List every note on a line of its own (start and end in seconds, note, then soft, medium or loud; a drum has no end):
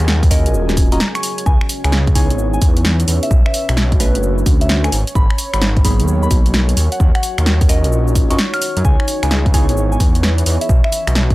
0.00 0.47 D#2 medium
0.00 1.47 F#3 medium
0.00 3.31 C#4 medium
0.00 2.22 F#4 loud
0.00 0.24 G#4 loud
0.00 0.25 A#4 medium
0.00 1.47 G#5 medium
0.08 snare loud
0.08 shaker soft
0.23 kick loud
0.23 open hi-hat medium
0.23 shaker soft
0.29 0.89 C#4 medium
0.29 0.89 F4 medium
0.29 0.89 F#4 medium
0.29 0.89 A#4 medium
0.29 1.46 D#5 medium
0.29 0.89 D#5 loud
0.29 kick medium
0.29 open hi-hat loud
0.29 shaker medium
0.46 0.56 A#1 medium
0.46 closed hi-hat medium
0.46 shaker soft
0.54 1.00 D#1 loud
0.54 shaker soft
0.69 snare medium
0.69 shaker soft
0.77 kick loud
0.77 open hi-hat loud
0.77 shaker medium
0.92 0.98 C#4 loud
0.92 0.98 F4 medium
0.92 0.98 F#4 medium
0.92 0.98 A#4 medium
0.92 0.98 D#5 loud
0.92 1.00 A#5 medium
0.92 closed hi-hat medium
0.92 shaker soft
1.00 snare loud
1.00 shaker soft
1.15 1.30 C#6 medium
1.15 finger snap medium
1.15 closed hi-hat medium
1.15 shaker soft
1.23 open hi-hat loud
1.23 shaker medium
1.38 closed hi-hat medium
1.38 shaker soft
1.46 1.58 C#2 loud
1.46 11.35 C#5 medium
1.46 1.65 G#5 loud
1.46 kick loud
1.46 shaker soft
1.61 finger snap medium
1.69 open hi-hat loud
1.69 shaker medium
1.84 2.32 C#2 medium
1.84 1.99 G#5 loud
1.84 finger snap medium
1.84 closed hi-hat medium
1.84 shaker soft
1.92 snare loud
1.92 shaker soft
1.97 4.92 B4 medium
2.07 kick loud
2.07 closed hi-hat soft
2.15 3.30 B3 medium
2.15 3.30 D#4 medium
2.15 3.30 E4 medium
2.15 3.30 G#4 medium
2.15 3.30 C#5 loud
2.15 2.34 G#5 medium
2.15 kick medium
2.15 open hi-hat loud
2.15 shaker medium
2.25 3.97 E6 medium
2.30 2.59 G#1 medium
2.30 closed hi-hat medium
2.30 shaker soft
2.39 shaker soft
2.54 2.68 G#5 medium
2.54 shaker soft
2.62 3.05 E2 medium
2.62 kick loud
2.62 open hi-hat loud
2.62 shaker medium
2.77 closed hi-hat medium
2.77 shaker soft
2.85 snare loud
2.85 shaker soft
3.00 closed hi-hat medium
3.00 shaker soft
3.08 3.20 E2 medium
3.08 open hi-hat loud
3.08 shaker medium
3.23 3.31 E5 medium
3.23 closed hi-hat medium
3.23 shaker soft
3.31 3.43 B1 loud
3.31 4.92 D3 loud
3.31 kick loud
3.31 shaker soft
3.46 3.68 E5 loud
3.46 finger snap medium
3.54 open hi-hat loud
3.54 shaker medium
3.69 4.17 B1 medium
3.69 finger snap medium
3.69 closed hi-hat medium
3.69 shaker soft
3.77 5.68 C#5 medium
3.77 snare loud
3.77 shaker soft
3.92 kick loud
3.92 closed hi-hat soft
4.00 4.91 A3 medium
4.00 4.91 C#4 medium
4.00 4.91 D4 medium
4.00 4.91 F#4 medium
4.00 4.91 B4 loud
4.00 open hi-hat loud
4.00 shaker medium
4.15 4.43 F#1 medium
4.15 closed hi-hat medium
4.15 shaker soft
4.23 shaker soft
4.38 shaker soft
4.46 4.90 D2 medium
4.46 kick loud
4.46 open hi-hat loud
4.46 shaker medium
4.61 4.69 E5 medium
4.61 closed hi-hat medium
4.61 shaker soft
4.69 snare loud
4.69 shaker soft
4.84 4.99 G#5 loud
4.84 finger snap medium
4.84 closed hi-hat medium
4.84 shaker soft
4.92 5.04 G#1 medium
4.92 open hi-hat loud
4.92 shaker medium
5.07 closed hi-hat medium
5.07 shaker soft
5.15 5.27 G#1 loud
5.15 5.34 B5 loud
5.15 kick loud
5.15 shaker soft
5.30 7.63 A#4 medium
5.30 finger snap medium
5.38 open hi-hat loud
5.38 shaker medium
5.48 9.60 F#4 medium
5.54 6.01 G#1 medium
5.54 5.68 B5 loud
5.54 finger snap medium
5.54 closed hi-hat medium
5.54 shaker soft
5.62 snare loud
5.62 shaker soft
5.75 7.63 G#5 medium
5.75 kick loud
5.75 closed hi-hat soft
5.85 6.76 F#3 medium
5.85 6.76 A#3 medium
5.85 6.76 B3 medium
5.85 6.76 D#4 medium
5.85 6.76 G#4 loud
5.85 6.03 B5 medium
5.85 kick medium
5.85 open hi-hat loud
5.85 shaker medium
6.00 6.28 D#2 medium
6.00 closed hi-hat medium
6.00 shaker soft
6.08 shaker soft
6.23 6.37 B5 loud
6.23 shaker soft
6.31 6.74 B1 medium
6.31 kick loud
6.31 open hi-hat loud
6.31 shaker medium
6.46 closed hi-hat medium
6.46 shaker soft
6.54 snare loud
6.54 shaker soft
6.69 closed hi-hat medium
6.69 shaker soft
6.77 6.89 D#2 medium
6.77 8.85 D#4 medium
6.77 open hi-hat loud
6.77 shaker medium
6.92 7.00 F#5 medium
6.92 closed hi-hat medium
6.92 shaker soft
7.00 7.12 D#2 loud
7.00 kick loud
7.00 shaker soft
7.15 7.37 F#5 loud
7.15 finger snap medium
7.15 closed hi-hat soft
7.20 11.35 C#5 medium
7.20 open hi-hat loud
7.20 shaker medium
7.38 7.86 D#2 medium
7.38 finger snap medium
7.38 closed hi-hat medium
7.38 shaker soft
7.46 snare loud
7.46 shaker soft
7.61 kick loud
7.61 open hi-hat medium
7.61 shaker soft
7.69 8.27 C#4 medium
7.69 8.28 F4 medium
7.69 8.28 F#4 medium
7.69 8.27 A#4 medium
7.69 8.28 D#5 loud
7.69 open hi-hat loud
7.69 shaker medium
7.84 8.32 A#1 medium
7.84 closed hi-hat medium
7.84 shaker soft
7.92 shaker soft
8.07 shaker soft
8.15 kick loud
8.15 open hi-hat loud
8.15 shaker medium
8.30 8.37 G#2 loud
8.30 8.36 C#4 loud
8.30 8.36 F4 medium
8.30 8.36 F#4 medium
8.30 8.36 A#4 medium
8.30 8.36 D#5 loud
8.30 8.38 C#6 medium
8.30 closed hi-hat medium
8.30 shaker soft
8.39 snare loud
8.39 shaker soft
8.54 8.68 F6 loud
8.54 finger snap medium
8.54 closed hi-hat medium
8.54 shaker soft
8.62 open hi-hat loud
8.62 shaker medium
8.77 8.83 F#2 medium
8.77 closed hi-hat medium
8.77 shaker soft
8.85 8.96 C#2 loud
8.85 11.35 E3 medium
8.85 9.03 G#5 loud
8.85 kick loud
8.85 shaker soft
9.00 finger snap medium
9.08 open hi-hat loud
9.08 shaker medium
9.14 10.69 D#5 medium
9.23 9.71 C#2 medium
9.23 9.37 G#5 medium
9.23 finger snap medium
9.23 closed hi-hat medium
9.23 shaker soft
9.31 snare loud
9.31 shaker soft
9.39 11.35 B5 medium
9.46 kick loud
9.46 closed hi-hat soft
9.54 10.68 B3 medium
9.54 10.68 D#4 medium
9.54 10.68 E4 medium
9.54 10.68 G#4 medium
9.54 10.68 C#5 loud
9.54 9.72 G#5 medium
9.54 kick medium
9.54 open hi-hat loud
9.54 shaker medium
9.69 9.97 G#1 medium
9.69 closed hi-hat medium
9.69 shaker soft
9.77 shaker soft
9.92 10.07 G#5 medium
9.92 shaker soft
10.00 10.44 E2 medium
10.00 kick loud
10.00 open hi-hat loud
10.00 shaker medium
10.15 closed hi-hat medium
10.15 shaker soft
10.23 snare loud
10.23 shaker soft
10.38 closed hi-hat medium
10.38 shaker soft
10.46 10.58 E2 medium
10.46 open hi-hat loud
10.46 shaker medium
10.61 10.69 E5 medium
10.61 closed hi-hat medium
10.61 shaker soft
10.69 10.81 B1 loud
10.69 11.35 D3 medium
10.69 kick loud
10.69 shaker soft
10.84 11.06 E5 medium
10.84 finger snap medium
10.92 open hi-hat loud
10.92 shaker medium
11.07 11.35 B1 medium
11.07 finger snap medium
11.07 closed hi-hat medium
11.07 shaker soft
11.15 snare loud
11.15 shaker soft
11.30 kick loud
11.30 closed hi-hat soft